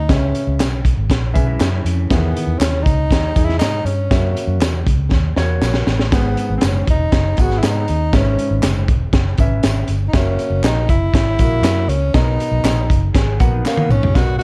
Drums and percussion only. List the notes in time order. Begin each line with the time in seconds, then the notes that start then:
0.09 kick, snare, closed hi-hat, tambourine
0.35 closed hi-hat, tambourine
0.60 snare, clap, closed hi-hat, tambourine
0.85 kick, closed hi-hat
1.10 kick, snare, closed hi-hat
1.36 kick, closed hi-hat, tambourine
1.60 snare, clap, closed hi-hat, tambourine
1.86 closed hi-hat, tambourine
2.10 kick, snare, closed hi-hat, tambourine
2.37 closed hi-hat, tambourine
2.61 snare, clap, closed hi-hat, tambourine
2.86 kick, closed hi-hat, tambourine
3.10 kick, snare, closed hi-hat, tambourine
3.36 kick, closed hi-hat, tambourine
3.49 snare
3.60 snare, clap, closed hi-hat, tambourine
3.86 closed hi-hat, tambourine
4.11 kick, snare, closed hi-hat, tambourine
4.37 closed hi-hat, tambourine
4.61 snare, clap, closed hi-hat, tambourine
4.87 kick, closed hi-hat, tambourine
5.11 kick, snare, tambourine
5.36 snare, tambourine
5.62 snare, clap, tambourine
5.74 snare
5.87 snare, tambourine
5.99 snare
6.12 kick, snare, closed hi-hat, tambourine
6.37 closed hi-hat, tambourine
6.61 snare, clap, closed hi-hat, tambourine
6.87 kick, closed hi-hat
7.12 kick, snare, closed hi-hat
7.37 kick, closed hi-hat, tambourine
7.50 snare
7.63 snare, clap, closed hi-hat, tambourine
7.88 closed hi-hat, tambourine
8.13 kick, snare, closed hi-hat, tambourine
8.39 closed hi-hat, tambourine
8.63 snare, clap, closed hi-hat, tambourine
8.88 kick, closed hi-hat
9.13 kick, snare, closed hi-hat
9.37 kick, closed hi-hat, tambourine
9.63 snare, clap, closed hi-hat, tambourine
9.88 closed hi-hat, tambourine
10.13 kick, snare, closed hi-hat, tambourine
10.39 closed hi-hat, tambourine
10.64 snare, clap, closed hi-hat, tambourine
10.89 kick, closed hi-hat, tambourine
11.14 kick, snare, closed hi-hat
11.39 kick, closed hi-hat, tambourine
11.64 snare, clap, closed hi-hat, tambourine
11.89 closed hi-hat, tambourine
12.14 kick, snare, closed hi-hat, tambourine
12.40 closed hi-hat, tambourine
12.64 snare, clap, closed hi-hat, tambourine
12.90 kick, closed hi-hat, tambourine
13.15 kick, snare, closed hi-hat, tambourine
13.40 kick, closed hi-hat, tambourine
13.66 snare, clap, tambourine
13.77 high tom
13.91 mid tom, tambourine
14.03 floor tom
14.15 kick, snare, closed hi-hat, tambourine